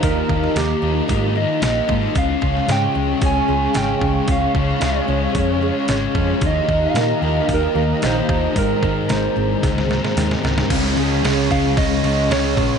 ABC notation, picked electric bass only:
X:1
M:4/4
L:1/8
Q:1/4=112
K:Dblyd
V:1 name="Picked electric bass" clef=bass
E,, E,, E,, E,, A,,2 B,,, A,, | D,, D,, A,, D,, D,, D,, A,,, D,, | D,, D,, D,, D,, F,,2 A,,, F,, | E,, E,, B,, E,, E,, E,, B,,, E,, |
A,,, A,,, A,,, A,,, D,,2 E,, D,, | D,, D,, D,, D,, D,, D,, D,, B,,, |]